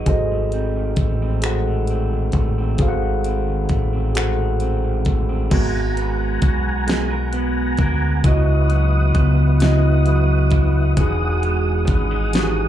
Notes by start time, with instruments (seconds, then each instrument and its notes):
Already playing: clean electric guitar F#3 G#3 D#4
0.06 fingered electric bass G#1, clean electric guitar G#2, tine electric piano F#4 G#4 A4 C5 D#5, kick, closed hi-hat
0.32 clean electric guitar A3
0.52 clean electric guitar C4, closed hi-hat
0.76 clean electric guitar D#3
0.96 fingered electric bass A1, clean electric guitar A3, kick, closed hi-hat
1.22 clean electric guitar C4
1.42 clean electric guitar G#2, tine electric piano F#4 G#4 A4 C5, finger snap, closed hi-hat
1.46 tine electric piano F#5
1.67 clean electric guitar A3
1.87 clean electric guitar C4, closed hi-hat
2.12 clean electric guitar D#3
2.32 fingered electric bass A1, clean electric guitar A3, kick, closed hi-hat
2.58 clean electric guitar C4
2.78 fingered electric bass G#1, clean electric guitar G#2, tine electric piano F#4 G#4 A4 C5, kick, closed hi-hat
2.82 tine electric piano F5
2.88 tine electric piano F#5
3.02 clean electric guitar A3
3.24 clean electric guitar C4, closed hi-hat
3.48 clean electric guitar D#3
3.69 fingered electric bass A1, clean electric guitar A3, kick, closed hi-hat
3.93 clean electric guitar C4
4.14 clean electric guitar G#2, tine electric piano F#4 G#4 A4 C5 F#5, finger snap, closed hi-hat
4.39 clean electric guitar A3
4.60 clean electric guitar C4, closed hi-hat
4.84 clean electric guitar D#3
5.05 clean electric guitar A3, kick, closed hi-hat
5.29 clean electric guitar C4
5.50 fingered electric bass G#1, clean electric guitar G#3 A#4, tine electric piano G#3 B3 F#4 A#4, tonewheel organ F#5 G#5 A#5, kick, closed hi-hat, crash
5.97 clean electric guitar B3, closed hi-hat
6.42 fingered electric bass B1, clean electric guitar F#4, kick, closed hi-hat
6.87 tine electric piano G#3 F#4 A#4, clean electric guitar G#4, snare, closed hi-hat
6.91 tine electric piano B3
7.10 clean electric guitar A#4
7.33 clean electric guitar B3, closed hi-hat
7.77 fingered electric bass D2, clean electric guitar A#4, kick, closed hi-hat
8.23 fingered electric bass C#2, tine electric piano C#3 B3 E4 F#4 D#5, clean electric guitar C#3 E4, tonewheel organ E4 B4 D#6, kick, closed hi-hat
8.70 clean electric guitar F#3, closed hi-hat
9.15 fingered electric bass C#2, clean electric guitar B3, kick, closed hi-hat
9.60 tine electric piano C#3 B3 E4 F#4, clean electric guitar E4, snare, closed hi-hat
9.64 tine electric piano D#5
10.06 clean electric guitar F#3, closed hi-hat
10.50 clean electric guitar E4, kick, closed hi-hat
10.97 fingered electric bass E1, clean electric guitar E3 F#4, tine electric piano E3 D#4 F#4, tonewheel organ G#4 F#5 D#6, kick, closed hi-hat
11.01 tine electric piano G#4
11.43 clean electric guitar G#3, closed hi-hat
11.87 fingered electric bass G#1, clean electric guitar C#4, kick, closed hi-hat
12.11 clean electric guitar D#4
12.33 tine electric piano E3 D#4 F#4 G4, clean electric guitar F#4, snare, closed hi-hat
12.44 tine electric piano G#4